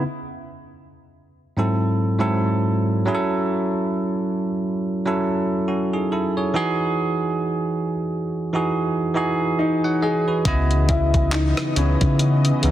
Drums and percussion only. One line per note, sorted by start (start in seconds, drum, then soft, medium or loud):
10.45 kick loud
10.45 closed hi-hat medium
10.71 closed hi-hat soft
10.89 kick medium
10.89 closed hi-hat medium
11.14 kick loud
11.14 closed hi-hat soft
11.32 clap loud
11.32 closed hi-hat medium
11.57 cross-stick loud
11.57 closed hi-hat medium
11.76 closed hi-hat medium
12.01 kick loud
12.01 closed hi-hat medium
12.19 closed hi-hat medium
12.45 closed hi-hat soft
12.63 closed hi-hat medium